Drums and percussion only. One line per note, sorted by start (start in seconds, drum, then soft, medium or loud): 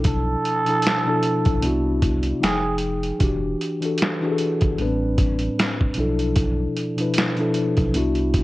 0.04 kick loud
0.04 closed hi-hat medium
0.45 closed hi-hat medium
0.66 closed hi-hat medium
0.82 closed hi-hat medium
0.87 finger snap medium
0.87 snare loud
1.23 closed hi-hat medium
1.45 kick loud
1.45 closed hi-hat soft
1.62 closed hi-hat medium
2.02 kick medium
2.02 closed hi-hat medium
2.23 closed hi-hat soft
2.43 finger snap medium
2.43 snare loud
2.43 closed hi-hat medium
2.78 closed hi-hat medium
3.03 closed hi-hat soft
3.20 kick loud
3.20 closed hi-hat medium
3.61 closed hi-hat medium
3.82 closed hi-hat medium
3.98 closed hi-hat medium
4.02 finger snap medium
4.02 snare loud
4.38 closed hi-hat medium
4.61 kick loud
4.61 closed hi-hat soft
4.78 closed hi-hat medium
5.18 kick medium
5.18 closed hi-hat medium
5.39 closed hi-hat soft
5.59 finger snap medium
5.59 snare loud
5.59 closed hi-hat medium
5.81 kick medium
5.94 closed hi-hat medium
6.19 closed hi-hat soft
6.36 kick loud
6.36 closed hi-hat medium
6.77 closed hi-hat medium
6.98 closed hi-hat medium
7.14 closed hi-hat medium
7.18 finger snap medium
7.18 snare loud
7.37 closed hi-hat soft
7.54 closed hi-hat medium
7.77 kick medium
7.77 closed hi-hat soft
7.94 closed hi-hat medium
8.15 closed hi-hat soft
8.34 kick medium
8.34 closed hi-hat medium